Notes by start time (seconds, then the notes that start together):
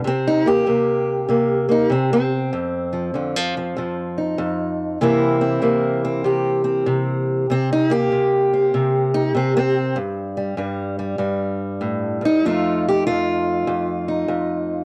0.04 C3 C4
0.27 D#4
0.46 A#3 G4
0.67 C3 A#3
1.28 C3 A#3
1.69 A#3 D#4
1.90 C3 C4
2.13 C4
2.53 F2
2.93 F3
3.14 F2 D3
3.36 F3
3.57 F3
3.77 F2 F3
4.18 D#4
4.38 F2
5.01 C3 E3 A#3 C4 E4
5.41 C4
5.62 C3 A#3
6.05 C4
6.24 C3 G4
6.64 C4
6.86 C3
7.50 C3 C4
7.73 D#4
7.90 A#3 G4
8.12 C3
8.54 C4
8.74 C3
9.14 D#4
9.35 C3 C4
9.57 C4
9.96 G2
10.37 G3
10.57 G2 G3
10.99 G3
11.18 G2 G3
11.81 A2
12.21 G2
12.25 D#4
12.45 F2 F3 A3 D#4 F4
12.89 G4
13.07 F2 F4
13.67 F2
14.08 D#4
14.28 F2